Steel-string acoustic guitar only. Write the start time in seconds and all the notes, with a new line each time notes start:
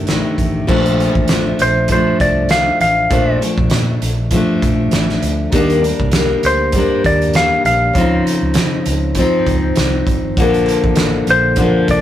Already playing: D4
0.07 C3 D#3 A3 D4
0.67 A#2 F3 A3 D4
1.29 F3 A3 D4
1.90 F3 A3 D4
3.10 A#2 F3 A3 D4
3.41 F3 A3 D4
4.32 F3 A3 D4
5.52 D#3 G3 A#3 D4
5.81 A#3 D4
5.86 G3
6.13 G3 A#3 D4
6.75 G3 A#3 D4
7.94 C#3 F3
7.98 C4 D#4
9.17 F3 C4 D#4
10.37 D3 F3 A#3 D4
10.42 A4
11.57 D3 F3 A#3 D4
11.62 A4